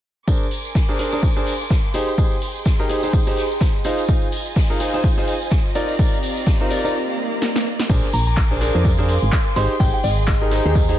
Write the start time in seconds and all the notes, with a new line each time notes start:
0.28 D4 G#4 A#4 C5 G#5 C6 D6, kick, tambourine
0.36 C6
0.41 tambourine
0.50 D6, open hi-hat, tambourine
0.55 F5
0.65 tambourine
0.75 kick, snare, open hi-hat, tambourine
0.89 D4 G#4 A#4 C5, tambourine
0.98 D4 G#4 A#4 C5, snare, open hi-hat, tambourine
1.12 D4 G#4 A#4 C5, tambourine
1.23 kick, tambourine
1.36 D4 G#4 A#4 C5, tambourine
1.47 open hi-hat, tambourine
1.61 tambourine
1.70 kick, snare, tambourine
1.84 tambourine
1.94 D#4 G4 G#4 C5 G5, open hi-hat, tambourine
2.08 D#5, tambourine
2.18 D#4 G4 G#4 C5, kick, tambourine
2.22 A#5
2.32 tambourine
2.42 open hi-hat, tambourine
2.55 tambourine
2.65 kick, snare, tambourine
2.79 D#4 G4 G#4 A#4, tambourine
2.89 D#4 G4 G#4 C5, open hi-hat, tambourine
3.03 D#4 G4 G#4 C5, tambourine
3.13 kick, tambourine
3.27 D#4 G4 G#4 C5, closed hi-hat, open hi-hat, tambourine
3.37 snare, open hi-hat, tambourine
3.51 tambourine
3.61 kick, snare, tambourine
3.75 tambourine
3.84 D#4 F4 G#4 C5 D#5 G#5, open hi-hat, tambourine
3.98 closed hi-hat, tambourine
4.08 D#4 F4 G#4 C5, kick, tambourine
4.22 C5, tambourine
4.32 open hi-hat, tambourine
4.43 G#5, tambourine
4.56 kick, snare, open hi-hat, tambourine
4.70 D#4 F4 G#4 A#4, tambourine
4.80 D#4 F4 G#4 C5, snare, open hi-hat, tambourine
4.94 D#4 F4 G#4 C5, tambourine
5.04 kick, tambourine
5.17 D#4 F4 G#4 C5, tambourine
5.28 open hi-hat, tambourine
5.41 tambourine
5.50 kick, snare, tambourine
5.65 tambourine
5.75 C4 D#4 F4 G4 A#4 D5 F5 A#5, open hi-hat, tambourine
5.88 tambourine
5.99 D#4 F4 A#4 D5, kick, tambourine
6.08 G4
6.13 tambourine
6.23 open hi-hat, tambourine
6.37 tambourine
6.46 kick, snare, tambourine
6.60 D#4 F4 A#4 C5, tambourine
6.70 D#4 F4 A#4 D5, open hi-hat, tambourine
6.84 D#4 F4 A#4 D5, tambourine
6.94 swell
7.42 snare
7.56 snare
7.79 snare
7.89 A#1 D4 G#4 A#4 C5 G#5 C6 D6, kick, crash, tambourine
7.96 C6
8.13 A#1 F5 A#5, open hi-hat, tambourine
8.27 A#5
8.37 kick, snare, clap, open hi-hat
8.51 D4 G#4 A#4 C5
8.61 D4 G#4 A#4 C5 D6, snare, open hi-hat, tambourine
8.75 F2 D4 G#4 A#4 C5
8.85 kick, tambourine
8.98 D4 G#4 A#4 C5
9.09 open hi-hat, tambourine
9.22 G#1
9.32 kick, snare, clap, tambourine
9.56 G#1 D#4 G4 G#4 C5 G5 C6, open hi-hat, tambourine
9.68 D#5
9.80 G#1 D#4 G4 G#4 C5 G5, kick, tambourine
9.94 G5
10.04 G#1 D#5 A#5, open hi-hat, tambourine
10.27 kick, snare, clap, tambourine
10.41 D#4 G4 G#4 A#4
10.51 D#4 G4 G#4 C5, open hi-hat, tambourine
10.65 D#2 D#4 G4 G#4 C5
10.75 kick, tambourine
10.89 D#4 G4 G#4 C5, closed hi-hat, open hi-hat